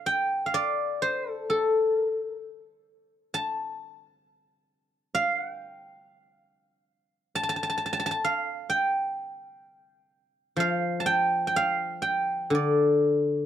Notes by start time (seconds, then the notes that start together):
Already playing: D5 F5
0.06 G5
0.46 F5
0.54 D5
1.02 C5
1.31 A4
1.50 A4
1.98 A#4
2.12 A4
2.26 A#4
2.39 A4
3.34 A5
5.15 F5
5.38 F#5
5.53 G5
7.35 A5
7.43 A5
7.49 A5
7.56 A5
7.63 A5
7.70 A5
7.78 A5
7.86 A5
7.93 A5
8.00 A5
8.06 A5
8.11 A5
8.24 F5
8.70 G5
10.56 F3 F5
11.00 A5
11.06 G5
11.47 G5
11.56 F5
12.02 G5
12.50 D3
12.55 D5